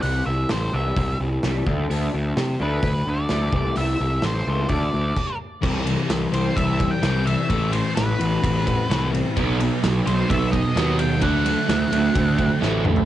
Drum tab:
CC |----------------|----------------|------------x---|x---------------|
RD |----------------|----------------|----------------|--x-x-x-x-x-x-x-|
HH |o---o---o---o---|o---o---o---o---|o---o---o-------|----------------|
SD |----o-------o---|----o-------o---|----o-----------|----o-------o---|
T2 |----------------|----------------|----------------|----------------|
FT |----------------|----------------|----------------|----------------|
BD |--------o-----o-|--------o-----o-|--------o---o---|o-------o-o-----|

CC |----------------|----------------|----------------|
RD |x-x-x-x-x-x-x-x-|x-x-x-x-x-x-x-x-|x-x-x-x-x-x-----|
HH |----------------|----------------|----------------|
SD |----o-------o---|----o-------o---|----o-------o---|
T2 |----------------|----------------|--------------o-|
FT |----------------|----------------|---------------o|
BD |o-------o-o-----|o-------o-o-----|o-------o-o-----|